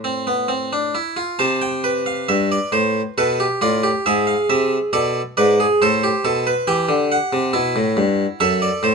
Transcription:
0.00 0.90 A2 medium
0.00 0.90 C5 medium
0.04 0.26 C4 medium
0.27 0.49 B3 medium
0.48 0.71 C4 medium
0.73 0.94 D4 medium
0.95 1.16 E4 medium
1.17 1.38 F4 medium
1.39 2.26 C3 medium
1.39 1.67 C5 medium
1.39 1.61 A5 medium
1.61 1.89 G5 medium
1.84 3.13 B4 medium
2.06 2.28 F5 medium
2.29 2.56 G2 medium
2.29 2.50 E5 medium
2.52 2.73 D5 medium
2.72 3.00 A2 medium
2.72 3.00 C5 medium
3.18 3.45 B2 medium
3.18 3.39 A4 medium
3.18 3.45 B4 medium
3.40 3.61 G4 medium
3.61 3.89 A2 medium
3.61 3.83 F4 medium
3.61 3.89 D5 medium
3.83 4.05 G4 medium
4.06 4.33 G#2 medium
4.06 4.91 G#4 medium
4.06 4.27 E5 medium
4.27 4.48 F5 medium
4.50 4.76 C3 medium
4.50 4.76 E5 medium
4.93 5.20 B2 medium
4.93 5.20 A4 medium
4.93 5.20 D5 medium
5.37 5.64 G#2 medium
5.37 5.58 B4 medium
5.37 5.64 D5 medium
5.60 5.80 G#4 medium
5.82 6.08 A2 medium
5.82 6.02 A4 medium
5.82 6.65 C5 medium
6.04 6.24 G4 medium
6.25 6.51 B2 medium
6.25 6.45 A4 medium
6.47 6.67 B4 medium
6.67 6.88 E3 medium
6.67 7.52 G4 medium
6.67 6.94 G5 medium
6.89 7.16 D3 medium
7.12 8.38 F#5 medium
7.33 7.53 C3 medium
7.53 7.75 B2 medium
7.53 8.38 E4 medium
7.76 7.97 A2 medium
7.97 8.24 G2 loud
8.40 8.68 F#2 loud
8.40 8.95 A4 medium
8.40 8.62 E5 medium
8.62 8.84 D5 medium
8.83 8.95 A2 medium
8.83 8.95 C5 medium

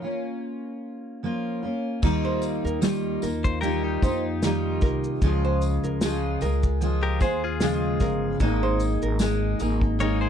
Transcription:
0.02 1.23 A#3 soft
0.02 1.23 C#4 soft
0.02 1.24 F4 soft
1.23 1.63 F3 soft
1.23 1.63 A#3 medium
1.23 1.63 C#4 medium
1.23 1.61 F4 medium
1.63 2.02 A#3 soft
1.63 2.03 C#4 soft
1.63 2.03 F4 soft
2.02 2.61 D#2 medium
2.02 2.80 D#3 medium
2.02 2.80 G3 medium
2.02 2.81 A#3 medium
2.02 2.81 D#4 loud
2.02 2.83 F4 loud
2.02 kick loud
2.02 crash medium
2.02 tambourine soft
2.25 2.42 C5 medium
2.42 tambourine medium
2.42 shaker medium
2.64 3.18 D#2 medium
2.64 2.82 A#4 medium
2.64 shaker soft
2.81 3.22 D#3 medium
2.81 3.22 G3 medium
2.81 3.22 A#3 medium
2.81 3.22 D#4 medium
2.81 3.21 F4 medium
2.81 snare loud
2.81 tambourine medium
2.81 shaker medium
3.22 3.98 D#2 medium
3.22 3.62 A#3 soft
3.22 3.62 D#4 medium
3.22 3.62 F4 medium
3.22 3.81 A#4 medium
3.22 tambourine medium
3.22 shaker soft
3.44 3.61 C5 medium
3.44 kick loud
3.44 shaker medium
3.61 4.02 G3 medium
3.61 4.02 A#3 medium
3.61 4.03 D#4 medium
3.61 4.02 F4 medium
3.61 3.83 G4 medium
3.61 3.83 A#4 loud
3.61 tambourine soft
3.61 shaker medium
3.84 5.00 D#4 medium
3.84 5.00 G4 medium
4.02 4.78 F2 loud
4.02 4.43 A#3 medium
4.02 4.43 D#4 medium
4.02 4.43 F4 medium
4.02 4.23 C5 medium
4.02 kick loud
4.02 tambourine medium
4.02 shaker soft
4.42 5.22 D#3 medium
4.42 5.23 G3 loud
4.42 5.23 A#3 medium
4.42 5.23 D#4 loud
4.42 5.24 F4 loud
4.42 snare loud
4.42 tambourine medium
4.42 shaker medium
4.81 5.19 C2 medium
4.81 5.03 A#4 medium
4.81 kick loud
4.81 snare soft
4.81 shaker soft
5.04 shaker soft
5.22 5.80 C#2 loud
5.22 6.01 C#3 medium
5.22 6.01 F3 medium
5.22 6.03 G#3 medium
5.22 6.02 F4 loud
5.22 6.04 G#4 medium
5.22 kick loud
5.22 tambourine soft
5.22 shaker medium
5.45 5.61 C5 medium
5.61 tambourine medium
5.61 shaker medium
5.84 6.38 C#2 medium
5.84 6.01 A#4 medium
5.84 shaker soft
6.01 6.42 C#3 medium
6.01 6.42 F3 medium
6.01 6.42 G#3 medium
6.01 6.42 F4 loud
6.01 6.40 G#4 medium
6.01 snare loud
6.01 tambourine loud
6.01 shaker medium
6.41 7.17 C#2 loud
6.41 6.81 G#3 soft
6.41 6.81 F4 medium
6.41 6.81 G#4 medium
6.41 7.00 A#4 medium
6.41 tambourine soft
6.41 shaker soft
6.63 kick medium
6.63 shaker medium
6.81 7.21 F3 medium
6.81 7.21 G#3 medium
6.81 7.21 F4 medium
6.81 7.19 G#4 medium
6.81 tambourine soft
6.81 shaker medium
7.03 7.20 G4 medium
7.03 7.20 A#4 medium
7.20 7.97 D#2 medium
7.20 7.60 G#3 medium
7.20 7.60 F4 medium
7.20 7.61 G#4 medium
7.20 7.42 G#4 medium
7.20 7.42 C5 medium
7.20 kick loud
7.20 tambourine medium
7.20 shaker soft
7.44 8.37 F4 medium
7.44 8.37 G#4 medium
7.60 8.40 C#3 medium
7.60 8.40 F3 loud
7.60 8.40 G#3 medium
7.60 8.41 F4 loud
7.60 8.41 G#4 loud
7.60 snare loud
7.60 tambourine medium
7.60 shaker medium
8.00 8.37 G1 medium
8.00 8.22 A#4 medium
8.00 kick medium
8.00 snare soft
8.00 tambourine soft
8.00 shaker medium
8.40 8.98 G#1 loud
8.40 9.19 G#3 medium
8.40 9.20 A#3 loud
8.40 9.20 D#4 medium
8.40 9.20 G#4 loud
8.40 kick loud
8.40 tambourine soft
8.40 shaker medium
8.63 8.80 C5 medium
8.80 tambourine medium
8.80 shaker medium
9.02 9.56 G#1 medium
9.02 9.20 A#4 medium
9.02 shaker medium
9.19 9.60 G#3 medium
9.19 9.60 A#3 medium
9.19 9.60 D#4 medium
9.19 9.59 G#4 medium
9.19 snare loud
9.19 tambourine medium
9.19 shaker medium
9.59 10.29 G#1 medium
9.59 9.99 A#3 medium
9.59 9.99 D#4 soft
9.59 10.00 G#4 medium
9.59 10.19 A#4 medium
9.59 tambourine medium
9.59 shaker medium
9.81 kick medium
9.99 10.29 G#3 medium
9.99 10.29 A#3 medium
9.99 10.29 D#4 medium
9.99 10.29 G#4 medium
9.99 10.21 A#4 medium
9.99 10.21 C#5 medium
9.99 shaker medium
10.21 10.29 G#4 medium
10.21 10.29 C5 medium

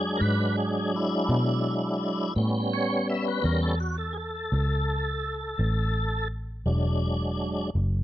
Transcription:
0.00 0.18 F#2 medium
0.00 2.32 F#3 soft
0.00 0.93 G#3 soft
0.00 2.33 D4 soft
0.00 0.21 G#4 medium
0.17 0.21 A#4 medium
0.21 1.26 G#2 medium
0.21 0.56 B4 medium
0.57 0.92 G#4 medium
0.95 2.33 G#3 medium
0.95 2.34 E4 medium
1.29 2.33 B2 medium
2.36 3.41 A2 medium
2.36 3.40 G3 soft
2.36 3.40 B3 soft
2.36 3.41 C#4 medium
2.73 3.08 C#5 medium
3.09 3.26 E5 medium
3.28 3.44 B4 medium
3.41 4.49 E2 medium
3.41 3.75 G3 soft
3.41 3.75 B3 soft
3.41 3.75 C#4 soft
3.41 3.61 A#4 medium
3.63 3.79 A4 medium
3.80 3.97 F#4 medium
3.98 4.15 A4 medium
4.13 4.17 G#4 medium
4.17 6.28 A4 medium
4.52 5.56 C#2 medium
5.59 6.64 A1 medium
6.66 7.71 E1 medium
6.66 7.70 F#3 soft
6.66 7.70 G#3 soft
6.66 7.70 D4 medium
7.75 8.04 F#1 medium

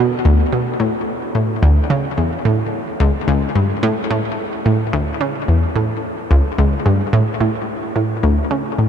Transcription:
0.00 0.15 B2 loud
0.25 0.42 D2 loud
0.53 0.70 B2 medium
0.80 0.90 A2 medium
1.35 1.61 A2 medium
1.63 1.80 D2 medium
1.90 2.07 C#3 medium
2.18 2.35 E2 medium
2.45 2.62 A2 medium
3.00 3.11 C#2 medium
3.28 3.45 C#2 loud
3.55 3.73 G2 medium
3.83 3.93 A2 medium
4.11 4.21 A2 medium
4.66 4.91 A2 medium
4.93 5.10 D2 loud
5.21 5.38 C#3 medium
5.48 5.65 E2 medium
5.75 5.93 A2 medium
6.31 6.41 C#2 loud
6.58 6.75 C#2 loud
6.86 7.03 G2 medium
7.13 7.24 A2 loud
7.41 7.51 A2 medium
7.96 8.21 A2 medium
8.23 8.40 D2 loud
8.51 8.68 C#3 medium
8.79 8.89 A2 medium

